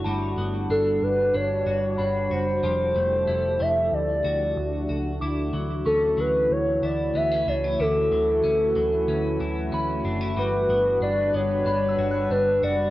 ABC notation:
X:1
M:4/4
L:1/16
Q:1/4=93
K:D
V:1 name="Synth bell"
a4- a z6 z b4- | b z12 z3 | d'4 c'4- c' z6 z | z12 b4- |
b z6 z b e' f'4- f' z |]
V:2 name="Soft synth lead"
z4 A2 B2 c6 =c2- | =c6 e2 d6 z2 | z4 A2 B2 c2 d2 e2 c2 | A12 z4 |
B4 d2 c6 B2 d2 |]
V:3 name="Ambient pad"
[G,DF]16 | [=F,EGA]8 [A,D^F]8 | [E,A,EF]16- | [E,A,EF]16 |
[G,DB]16 |]
V:4 name="Clean electric guitar"
[G,F]2 B,2 D4 D2 F2 D2 F2 | [=F,G]2 A,2 E2 A,2 z2 ^F4 F2 | E2 F,2 C2 F,4 E2 B, C D E | [D,E]2 F,2 C2 F,2 C2 E2 C2 D E |
[G,F]2 B,2 D2 B,2 D2 F2 D2 F2 |]
V:5 name="Picked electric bass" clef=bass
G,,,2 G,,,2 G,,,2 G,,,2 G,,,2 G,,,2 G,,,2 F,,,2 | =F,,,2 F,,,2 F,,,2 F,,,2 D,,2 D,,2 D,,2 C,,2 | D,,2 D,,2 D,,2 D,,2 D,,2 D,,2 D,,2 C,,2 | D,,2 D,,2 D,,2 D,,2 D,,2 D,,2 D,,2 F,,,2 |
G,,,2 G,,,2 G,,,2 G,,,2 G,,,2 G,,,2 G,,,2 F,,,2 |]